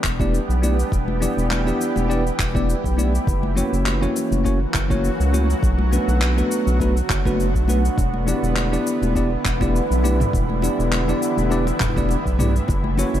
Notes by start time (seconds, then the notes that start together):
Already playing: E3 G3 B3 D4 G4
0.04 E1, kick, clap, cabasa
0.19 B3 D4 E4 G4 D5, kick, high conga, cabasa
0.34 cabasa
0.49 B1, cabasa
0.62 B3 D4 E4 G4 D5, high conga, cabasa
0.79 cabasa
0.91 E1 E4, kick, cabasa
1.08 high conga
1.21 B3 D4 E4 G4 D5, low conga, cabasa
1.37 E1, cabasa
1.51 clap, high conga, cabasa
1.65 B3 D4 E4 G4 D5, low conga, cabasa
1.81 cabasa
1.96 E1, high conga, cabasa
2.08 B3 D4 E4 G4 D5, cabasa
2.27 cabasa
2.39 E1, kick, clap, cabasa
2.54 B3 D4 E4 G4 D5, kick, high conga, cabasa
2.70 cabasa
2.84 B1, kick, cabasa
2.97 B3 D4 E4 G4 D5, high conga, cabasa
3.15 cabasa
3.27 F#1 E3 F#3 A#3 C#4 F#4, kick, cabasa
3.43 high conga
3.55 A#3 C#4 E4 F#4 C#5, low conga, cabasa
3.73 F#1, cabasa
3.86 clap, high conga, cabasa
4.01 A#3 C#4 E4 F#4 C#5, low conga, cabasa
4.16 cabasa
4.32 F#1, high conga, cabasa
4.44 A#3 C#4 E4 F#4 C#5, kick, cabasa
4.74 F#1, kick, clap, cabasa
4.89 A#3 C#4 E4 F#4 C#5, kick, high conga, cabasa
5.04 cabasa
5.20 C#2, cabasa
5.33 A#3 C#4 E4 F#4 C#5, high conga, cabasa
5.50 cabasa
5.63 B1 D3 A3 B3, kick, cabasa
5.79 high conga
5.91 A3 B3 D4 F#4 B4, low conga, cabasa
6.08 B1, cabasa
6.21 clap, high conga, cabasa
6.37 A3 B3 D4 F#4 B4, low conga, cabasa
6.52 cabasa
6.67 B1, high conga, cabasa
6.80 A3 B3 D4 F#4 B4, kick, cabasa
6.97 cabasa
7.10 F#1, kick, clap, cabasa
7.25 A3 B3 D4 F#4 B4, kick, high conga, cabasa
7.40 cabasa
7.55 B1, kick, cabasa
7.68 A3 B3 D4 F#4 B4, high conga, cabasa
7.85 cabasa
7.98 E1 D3 E3 G3 E4, kick, high bongo, cabasa
8.14 high conga
8.26 B3 D4 E4 G4 D5, low conga, cabasa
8.43 E1, cabasa
8.56 clap, high bongo, high conga, cabasa
8.72 B3 D4 E4 G4 D5, low conga, cabasa
8.87 cabasa
9.02 E1, high bongo, high conga, cabasa
9.15 B3 D4 E4 G4 D5, kick, cabasa
9.45 E1, kick, clap, cabasa
9.60 B3 D4 E4 G4 D5, kick, high bongo, high conga, cabasa
9.76 cabasa
9.91 B1, cabasa
10.03 B3 D4 E4 G4 D5, high bongo, high conga, cabasa
10.20 mid tom, cabasa
10.33 E1, kick, cabasa
10.50 high conga
10.62 B3 D4 E4 G4 D5, high bongo, low conga, cabasa
10.79 E1, cabasa
10.92 clap, high conga, cabasa
11.08 B3 D4 E4 G4 D5, high bongo, low conga, cabasa
11.22 cabasa
11.38 E1, high conga, cabasa
11.50 B3 D4 E4 G4 D5, cabasa
11.67 high bongo, cabasa
11.80 E1, kick, clap, mid tom, cabasa
11.96 B3 D4 E4 G4 D5, kick, high conga, cabasa
12.09 high bongo, cabasa
12.26 B1, kick, cabasa
12.38 B3 D4 E4 G4 D5, mid tom, high conga, cabasa
12.56 cabasa
12.68 F#1, kick, high bongo, cabasa
12.84 high conga
12.97 A#3 C#4 E4 F#4 C#5, low conga, cabasa
13.14 F#1, high bongo, cabasa